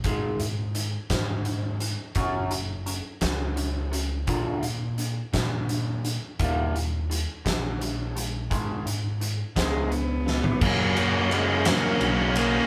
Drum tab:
CC |------------|------------|------------|------------|
RD |------------|------------|------------|------------|
HH |x-x-x-x-x-x-|x-x-x-x-x-x-|x-x-x-x-x-x-|x-x-x-x-x-x-|
SD |------o-----|------o-----|------o-----|------o-----|
FT |------------|------------|------------|------------|
BD |o-----o-----|o-----o-----|o-----o-----|o-----o-----|

CC |------------|x-----------|
RD |------------|--x-x-x-x-x-|
HH |x-x-x-x-x---|------------|
SD |------o---o-|------o-----|
FT |-----------o|------------|
BD |o-----o-----|o-----------|